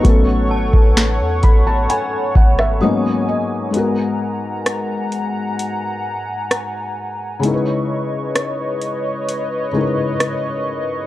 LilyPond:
<<
  \new Staff \with { instrumentName = "Synth bell" } { \time 4/4 \key gis \minor \tempo 4 = 65 r8 a''4. b''4 dis'''4~ | dis'''8 r2. r8 | r1 | }
  \new Staff \with { instrumentName = "Analog synth pad" } { \time 4/4 \key gis \minor << { <cis'' fis'' cis'''>1 | <fis'' ais''>1 | <b' dis'' cis'''>1 | } \\ { a'2. gis''4 | gis''1 | cis''1 | } >> }
  \new Staff \with { instrumentName = "Felt piano" } { \time 4/4 \key gis \minor <dis' b'>16 r4 r16 b''16 a''16 gis''8 fis''16 e''16 dis''8 dis''8 | r1 | r1 | }
  \new Staff \with { instrumentName = "Felt piano" } { \time 4/4 \key gis \minor <fis a b cis' a'>2. <gis, fis ais b cis'>4 | <gis, gis b fis' ais'>1 | <cis gis dis' e' ais' b'>2~ <cis gis dis' e' ais' b'>8 <cis gis dis' e' ais' b'>4. | }
  \new Staff \with { instrumentName = "808-style bass" } { \clef bass \time 4/4 \key gis \minor a,,8 gis,,16 a,,8 e,16 a,,8 r8 gis,,8 r4 | r1 | r1 | }
  \new DrumStaff \with { instrumentName = "Drums" } \drummode { \time 4/4 <hh bd>8. bd16 <hh sn>8 <hh bd>8 hh8 bd16 ss16 r4 | hh4 <hh ss>8 hh8 hh4 <hh ss>4 | hh4 <hh ss>8 hh8 hh4 <hh ss>4 | }
>>